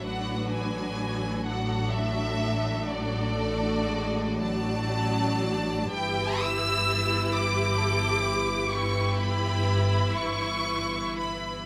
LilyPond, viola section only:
\new Staff \with { instrumentName = "Viola section" } { \time 12/8 \key b \dorian \tempo 4. = 42 << { d'4. d'2. fis'4. | \key e \dorian g'4. g'4. e'2. | } \\ { fis2. fis8 a8 gis8 fis4. | e2. e2. | } >> }